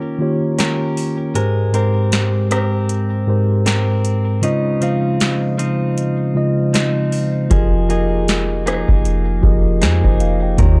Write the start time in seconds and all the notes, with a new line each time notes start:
Already playing: D#3 A#3 C#4 F4 G4 A#4 C#5
0.19 D#3 A#3 F4 G4 C#5
0.59 C#4 G4 A#4, snare, closed hi-hat
0.97 open hi-hat
1.34 G#2 G#3 G4 A#4 C5, closed hi-hat
1.73 G#2 G#3 C4 G4 A#4 C5, closed hi-hat
2.12 snare, closed hi-hat
2.51 C4 G4 A#4, cross-stick, closed hi-hat
2.89 closed hi-hat
3.26 G#2 G#3 G4 A#4 C5
3.66 C4 G4 A#4, snare, closed hi-hat
4.05 closed hi-hat
4.42 C#3 G#3 D#4 F4 C5 D#5, closed hi-hat
4.80 C#3 F3 G#3 C4 D#4 F4 C5 F5, closed hi-hat
5.20 snare, closed hi-hat
5.58 F3 C4 D#4, closed hi-hat
5.98 closed hi-hat
6.34 C#3 G#3 F4 C5 D#5
6.74 F3 C4 D#4, snare, closed hi-hat
7.12 open hi-hat
7.49 F1 F3 F4 G4 G#4 A#4 D#5, kick, closed hi-hat
7.88 F3 A#3 D#4 F4 G4 G#4 A#4 D#5, closed hi-hat
8.28 snare, closed hi-hat
8.66 A#3 D#4 G#4, cross-stick, closed hi-hat
8.88 F1, kick
9.05 closed hi-hat
9.42 F1 F3 F4 G4 G#4 A#4 D#5, kick
9.82 F2 A#3 D#4 G#4 C5, snare, closed hi-hat
10.04 F1 C5 D#5, kick
10.20 F5, closed hi-hat
10.43 D#5 G5
10.57 D#2 D#3 A#3 F4 G4 A#4 C#5, kick, closed hi-hat